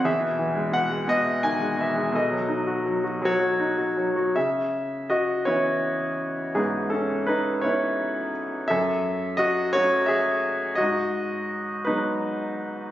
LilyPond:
<<
  \new Staff \with { instrumentName = "Grand piano" } { \time 6/8 \key cis \minor \tempo 4. = 55 << { e''4 fis''8 dis''8 gis''8 e''8 | dis''4. cis''4. | e''4 dis''8 cis''4. | gis'8 a'8 b'8 cis''4 r8 |
e''4 dis''8 cis''8 e''4 | dis''4. b'4. | } \\ { gis'4. r4. | a'4. fis'4. | gis'4 fis'8 e'4. | b8 cis'8 dis'8 e'4 r8 |
a'4 fis'8 fis'8 gis'4 | fis'4. dis'4. | } >> }
  \new Staff \with { instrumentName = "Grand piano" } { \clef bass \time 6/8 \key cis \minor e,16 b,16 e16 gis16 b,16 gis16 b,16 e''16 dis16 gis16 b,16 gis16 | b,16 fis16 dis'16 fis'16 fis16 fis'16 fis16 fis'16 dis'16 fis'16 fis16 fis'16 | cis4. <e b cis'>4. | gis,4. <b cis'>4. |
fis,4. <fis a cis'>4. | gis,4. <fis gis b>4. | }
>>